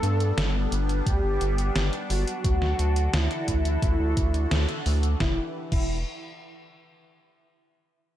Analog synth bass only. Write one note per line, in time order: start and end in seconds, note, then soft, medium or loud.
0.03 0.32 G2 loud
0.37 0.67 G1 loud
0.72 1.01 G1 loud
1.07 1.21 D2 medium
1.24 1.38 G1 medium
1.41 1.70 G1 loud
1.75 1.90 G1 medium
2.10 2.25 G1 medium
2.44 2.74 D2 loud
2.79 3.08 D2 medium
3.13 3.28 D2 medium
3.48 3.77 D2 loud
3.82 3.97 D2 loud
4.00 4.14 D2 medium
4.17 4.46 D2 loud
4.52 4.66 D2 loud
4.86 5.15 D2 loud
5.20 5.40 E1 loud
5.72 6.04 E1 loud